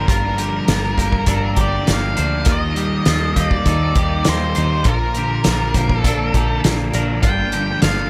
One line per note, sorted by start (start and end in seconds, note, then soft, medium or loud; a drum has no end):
0.00 0.68 D3 medium
0.00 0.36 F3 medium
0.00 0.67 A#3 medium
0.00 0.97 A#3 medium
0.00 1.27 D4 medium
0.00 1.28 D4 medium
0.00 0.72 G4 medium
0.07 0.59 G1 medium
0.07 1.57 G2 medium
0.07 1.58 G2 medium
0.07 0.38 F4 medium
0.07 1.63 A#4 medium
0.07 kick loud
0.07 closed hi-hat loud
0.37 1.88 D3 medium
0.37 1.85 F3 medium
0.37 0.68 G4 medium
0.37 closed hi-hat medium
0.68 0.94 G1 medium
0.68 2.18 F3 medium
0.68 1.26 A#3 medium
0.68 0.98 F4 medium
0.68 snare loud
0.68 closed hi-hat medium
0.97 1.24 G1 medium
0.97 1.56 D3 medium
0.97 1.87 A#3 medium
0.97 1.31 G4 medium
0.97 kick medium
0.97 closed hi-hat medium
1.12 kick medium
1.26 1.53 G1 medium
1.26 3.06 A#3 medium
1.26 2.15 D4 medium
1.26 1.58 A4 medium
1.26 kick loud
1.26 closed hi-hat medium
1.56 1.83 G1 medium
1.56 2.46 D3 medium
1.56 2.47 G4 medium
1.56 2.18 G4 medium
1.56 kick medium
1.56 closed hi-hat medium
1.61 1.90 D5 medium
1.86 2.14 G1 medium
1.86 2.47 F3 medium
1.86 3.37 A#3 medium
1.86 snare loud
1.86 closed hi-hat medium
1.93 2.52 F5 medium
2.16 2.44 D2 medium
2.16 2.46 D4 medium
2.16 2.47 D4 medium
2.16 2.48 C5 medium
2.16 closed hi-hat medium
2.45 2.98 D#2 medium
2.45 3.96 D#3 medium
2.45 3.35 D#3 medium
2.45 2.77 F4 medium
2.45 kick loud
2.45 closed hi-hat medium
2.52 3.40 D#5 medium
2.75 4.23 G3 medium
2.75 3.06 G3 medium
2.75 3.07 G4 medium
2.75 closed hi-hat medium
3.05 3.33 D#2 medium
3.05 4.56 G3 medium
3.05 3.67 A#3 medium
3.05 3.36 F4 medium
3.05 snare loud
3.05 closed hi-hat medium
3.36 3.62 D#2 medium
3.36 3.96 D#3 medium
3.36 4.27 A#3 medium
3.36 3.66 G4 medium
3.36 kick medium
3.36 closed hi-hat medium
3.40 3.51 D#5 medium
3.51 4.29 D5 medium
3.51 kick medium
3.66 3.92 D#2 medium
3.66 5.44 A#3 medium
3.66 4.56 D#4 medium
3.66 3.97 A4 medium
3.66 kick loud
3.66 closed hi-hat medium
3.95 4.22 D#2 medium
3.95 4.86 D#3 medium
3.95 4.56 G4 medium
3.95 4.87 G4 medium
3.95 kick medium
3.95 closed hi-hat medium
4.25 4.53 D#2 medium
4.25 4.85 G3 medium
4.25 5.77 A#3 medium
4.25 snare loud
4.25 closed hi-hat medium
4.29 4.89 C5 medium
4.55 4.82 D#2 medium
4.55 4.86 D#4 medium
4.55 4.86 C5 medium
4.55 closed hi-hat medium
4.84 5.37 A#1 medium
4.84 6.34 A#2 medium
4.84 6.35 A#2 medium
4.84 5.17 F4 medium
4.84 5.98 A#4 medium
4.84 kick loud
4.84 closed hi-hat medium
5.15 6.65 D3 medium
5.15 6.65 F3 medium
5.15 5.46 G4 medium
5.15 closed hi-hat medium
5.44 5.72 A#1 medium
5.44 7.28 F3 medium
5.44 6.04 A#3 medium
5.44 5.75 F4 medium
5.44 snare loud
5.44 closed hi-hat loud
5.74 6.00 A#1 medium
5.74 6.33 D3 medium
5.74 6.65 A#3 medium
5.74 6.05 G4 medium
5.74 kick medium
5.74 closed hi-hat medium
5.89 kick medium
5.98 6.61 A4 medium
6.04 6.30 A#1 medium
6.04 7.83 A#3 medium
6.04 6.94 D4 medium
6.04 6.34 A4 medium
6.04 kick medium
6.04 closed hi-hat medium
6.34 6.60 A#1 medium
6.34 7.24 D3 medium
6.34 6.94 G4 medium
6.34 8.10 A#4 medium
6.34 kick medium
6.34 closed hi-hat medium
6.64 6.90 A#1 medium
6.64 7.27 F3 medium
6.64 8.10 A#3 medium
6.64 snare loud
6.64 closed hi-hat medium
6.94 7.19 A#1 medium
6.94 8.10 D4 medium
6.94 8.10 A#4 medium
6.94 closed hi-hat medium
7.23 7.75 G1 medium
7.23 8.10 G2 medium
7.23 7.53 F4 medium
7.23 7.82 G5 loud
7.23 kick loud
7.23 closed hi-hat medium
7.52 8.10 D3 medium
7.52 8.10 F3 medium
7.52 7.83 G4 medium
7.52 closed hi-hat medium
7.82 8.08 G1 medium
7.82 8.10 F3 medium
7.82 8.10 A#3 medium
7.82 8.10 F4 medium
7.82 8.10 F5 medium
7.82 snare loud
7.82 closed hi-hat medium